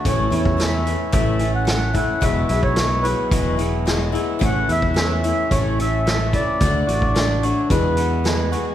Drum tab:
HH |x-x-x-x-x-x-x-x-|x-x-x-x-x-x-x-x-|x-x-x-x-x-x-x-x-|x-x-x-x-x-x-x-x-|
SD |----o-------o---|----o-------o---|----o-------o---|----o-------o---|
BD |o--o----o-----o-|o--o----o-------|o--o----o-----o-|o--o----o-------|